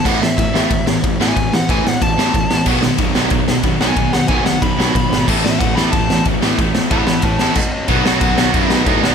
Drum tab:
CC |x-------|--------|x-------|--------|
RD |--x-x-x-|x-x-x-x-|--x-x-x-|x-x-x-x-|
SD |-o-o-o-o|-o-o-o-o|-o-o-o-o|-o-o-o-o|
BD |o-o-o-o-|o-o-o-o-|o-o-o-o-|o-o-o-o-|

CC |x-------|------x-|x-x-x-x-|
RD |--x-x-x-|x-x-x---|--------|
SD |-o-o-o-o|-o-o-o--|-o-o-o-o|
BD |o-o-o-o-|o-o-o-o-|o-o-o-o-|